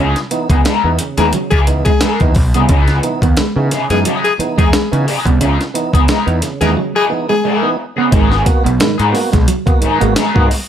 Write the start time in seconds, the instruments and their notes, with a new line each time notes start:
Already playing: picked electric bass C#2, tonewheel organ C#3, clean electric guitar E3 B3
0.00 clean electric guitar C#4 D#4 G#4
0.16 snare, closed hi-hat
0.31 tonewheel organ E3 B3 D#4, muted clean electric guitar stroke, closed hi-hat
0.50 picked electric bass C#2, clean electric guitar E3 B3 D#4 G#4, tonewheel organ B3 D#4, kick, closed hi-hat
0.64 clean electric guitar E3 G#3 B3 D#4 A#4, snare, closed hi-hat
0.84 picked electric bass E2, tonewheel organ E3 B3 D#4
0.99 tonewheel organ C#3, muted clean electric guitar stroke, closed hi-hat
1.17 picked electric bass D#2, tonewheel organ E3 B3 D#4, clean electric guitar E3 G#3 B3 D#4 A#4, tenor saxophone G#4, snare, closed hi-hat
1.32 tonewheel organ C#3, clean electric guitar F#3, muted clean electric guitar stroke, muted picked electric bass stroke, closed hi-hat
1.51 picked electric bass C#2, clean electric guitar E3 B3 D#4 G#4, tenor saxophone G#4, kick, closed hi-hat
1.67 tonewheel organ E3 B3 D#4, muted clean electric guitar stroke, closed hi-hat
1.85 clean electric guitar G#3, tonewheel organ B3 D#4, tenor saxophone G#4, muted clean electric guitar stroke, kick, closed hi-hat
2.00 clean electric guitar E3 G#3 B3 D#4 G#4, snare, closed hi-hat
2.20 picked electric bass D#2, tonewheel organ E3 B3 D#4, muted clean electric guitar stroke, kick, closed hi-hat
2.35 picked electric bass B1, muted clean electric guitar stroke, kick, open hi-hat
2.54 picked electric bass C2, tonewheel organ C#3, clean electric guitar E3 B3 D#4 G#4, closed hi-hat
2.68 picked electric bass C#2, tonewheel organ C#3, clean electric guitar E3 B3 C#4 D#4 G#4, kick, closed hi-hat
2.88 snare, closed hi-hat
3.03 tonewheel organ E3 B3 D#4, muted clean electric guitar stroke, closed hi-hat
3.22 picked electric bass D#2, tonewheel organ B3 D#4, clean electric guitar B3, muted clean electric guitar stroke, kick, closed hi-hat
3.37 clean electric guitar G#3, muted picked electric bass stroke, muted clean electric guitar stroke, snare, closed hi-hat
3.56 picked electric bass C#3, tonewheel organ E3 B3 D#4
3.71 tonewheel organ C#3, clean electric guitar E3 B3 D#4 G#4, muted clean electric guitar stroke, snare, closed hi-hat
3.90 picked electric bass F#2, tonewheel organ E3 B3 D#4, clean electric guitar G#3, tenor saxophone G#4, snare, closed hi-hat
4.05 tonewheel organ C#3, clean electric guitar E3 F#3 B3 D#4 G#4, closed hi-hat
4.25 tenor saxophone G#4, closed hi-hat
4.39 tonewheel organ E3 B3 D#4, muted picked electric bass stroke, muted clean electric guitar stroke, closed hi-hat
4.58 picked electric bass E2, clean electric guitar E3 G#3 B3 D#4 G#4, tonewheel organ B3 D#4, tenor saxophone G#4, kick, closed hi-hat
4.73 clean electric guitar G#3, snare, closed hi-hat
4.91 picked electric bass C#3, tonewheel organ E3 B3 D#4, muted clean electric guitar stroke, closed hi-hat
5.07 clean electric guitar E3 B3 D#4 G#4, open hi-hat
5.26 picked electric bass C2, tonewheel organ C#3, clean electric guitar B3, muted clean electric guitar stroke, kick, closed hi-hat
5.41 picked electric bass C#2, tonewheel organ C#3, clean electric guitar E3 B3 C#4 D#4 G#4, closed hi-hat
5.61 snare, closed hi-hat
5.74 tonewheel organ E3 B3 D#4, muted clean electric guitar stroke, closed hi-hat
5.93 picked electric bass C#2, clean electric guitar E3 B3 D#4 G#4, tonewheel organ B3 D#4, kick, closed hi-hat
6.08 clean electric guitar E3 G#3 B3 D#4 A#4, snare, closed hi-hat
6.26 picked electric bass E2, tonewheel organ E3 B3 D#4, closed hi-hat
6.42 tonewheel organ C#3, muted clean electric guitar stroke, snare, closed hi-hat
6.61 picked electric bass D#2, tonewheel organ E3 B3 D#4, clean electric guitar E3 G#3 B3 D#4 A#4, tenor saxophone G#4, snare, closed hi-hat
6.76 tonewheel organ C#3, clean electric guitar F#3, muted clean electric guitar stroke
6.95 clean electric guitar E3 B3 D#4 G#4, tenor saxophone G#4
7.10 tonewheel organ E3 B3 D#4, muted clean electric guitar stroke
7.29 clean electric guitar G#3, tonewheel organ B3 D#4, tenor saxophone G#4, muted clean electric guitar stroke
7.44 clean electric guitar E3 G#3 B3 D#4 G#4
7.62 tonewheel organ E3 B3 D#4, muted clean electric guitar stroke
7.79 muted clean electric guitar stroke
7.96 tonewheel organ C#3, clean electric guitar E3 B3 D#4 G#4
8.11 picked electric bass G#1, tonewheel organ G#2 D#3, clean electric guitar F#3 G#3 B3 D#4 G#4, kick, closed hi-hat
8.30 tonewheel organ B3 F#4, snare
8.45 tonewheel organ A#3 B3 F#4, muted clean electric guitar stroke, kick, closed hi-hat
8.64 picked electric bass B1, clean electric guitar B3, muted clean electric guitar stroke, closed hi-hat
8.80 tonewheel organ G#2 D#3, clean electric guitar G#3, muted clean electric guitar stroke, muted picked electric bass stroke, snare, closed hi-hat
8.98 picked electric bass G#2, clean electric guitar F#3 B3 D#4 G#4, closed hi-hat
9.12 tonewheel organ A#3 B3 F#4, muted clean electric guitar stroke, snare, open hi-hat
9.32 picked electric bass B1, clean electric guitar G#3, tonewheel organ B3 F#4, muted clean electric guitar stroke, kick, snare, closed hi-hat
9.48 clean electric guitar F#3, closed hi-hat
9.66 tonewheel organ A#3 B3 F#4, muted clean electric guitar stroke, kick, closed hi-hat
9.81 tonewheel organ G#2 D#3, clean electric guitar F#3 B3 D#4, muted clean electric guitar stroke, muted picked electric bass stroke, closed hi-hat
9.85 clean electric guitar G#4
10.00 picked electric bass G#1, clean electric guitar G#3, tonewheel organ A#3 B3 F#4, muted clean electric guitar stroke, closed hi-hat
10.16 clean electric guitar F#3 G#3 B3 D#4 G#4, snare, closed hi-hat
10.34 picked electric bass G#2, tonewheel organ A#3 B3 F#4, muted clean electric guitar stroke, kick
10.49 muted clean electric guitar stroke, open hi-hat